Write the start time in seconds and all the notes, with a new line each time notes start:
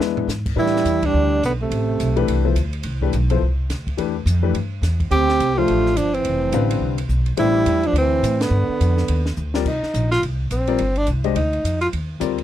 Already playing: G#3 B3 D4 E4 B4
0.00 E2, snare
0.17 floor tom
0.28 G#2, snare, hi-hat pedal
0.46 kick, crash
0.56 A2 E3 G3 A3 D4 E4 G4 B4
0.66 snare
0.76 snare
0.85 E2, hi-hat pedal, ride
1.03 G3 D4, kick, ride
1.14 D2
1.42 B1 B3, hi-hat pedal, ride
1.46 D3
1.62 C3 A3
1.70 A1, ride
2.00 B1, hi-hat pedal, ride
2.16 E3 A3 D4 G4 B4, ride
2.28 C2, ride
2.44 F3 B3 E4 A4 C5
2.55 D2, hi-hat pedal, ride
2.73 ride
2.83 C2, ride
3.01 E3 A3 D4 G4 B4, kick
3.13 B1, hi-hat pedal, ride
3.30 F3 B3 E4 A4 C5, ride
3.42 C2
3.70 D2, snare, hi-hat pedal, ride
3.87 kick, ride
3.97 E2 E3 A3 D4 G4 B4, ride
4.26 F2, hi-hat pedal, ride
4.43 E3 A3 D4 G4 B4
4.54 G2, ride
4.82 E2, snare, hi-hat pedal, ride
5.00 kick, ride
5.11 D2 C4 G4, ride
5.29 snare
5.40 C2, hi-hat pedal, ride
5.57 F3 A3 D4 F4 G4 C5
5.68 A1, ride
5.86 snare
5.97 G1 F3 D4, hi-hat pedal, ride
6.14 E3 C4, ride
6.25 F1, ride
6.52 A1 D3 G3 C4 B4 F5, hi-hat pedal, ride
6.70 ride
6.80 C2
6.98 ride
7.09 B1, hi-hat pedal
7.26 ride
7.37 A1 E3 G3 A3 D4 E4 G4 C5, ride
7.66 E2, hi-hat pedal, ride
7.83 F3 D4, ride
7.93 D2, ride
7.98 E3 C4
8.23 A2, hi-hat pedal, ride
8.41 D3 B3, snare, ride
8.50 G2
8.69 muted upright bass stroke
8.80 F2, hi-hat pedal, ride
8.97 snare
9.08 D#2, ride
9.26 snare
9.37 D2, hi-hat pedal
9.54 G3 C4 F4 A#4 D5, snare
9.66 C2 D#4, kick, crash
9.83 muted upright bass stroke, snare
9.94 A#1, hi-hat pedal, ride
10.12 F4, snare, ride
10.22 C2, ride
10.50 A#1 C4, hi-hat pedal, ride
10.67 G3 C4 F4 A#4 D5, ride
10.78 G1, ride
10.96 D4, ride
11.06 C2, hi-hat pedal, ride
11.24 G#3 D4 G4 C5 D#5, ride
11.35 D2 D#4, ride
11.53 ride
11.64 F2, hi-hat pedal, ride
11.81 F4, ride
11.93 D#2, ride
12.20 D2 G3 C4 F4 A#4 D5, hi-hat pedal, ride
12.38 ride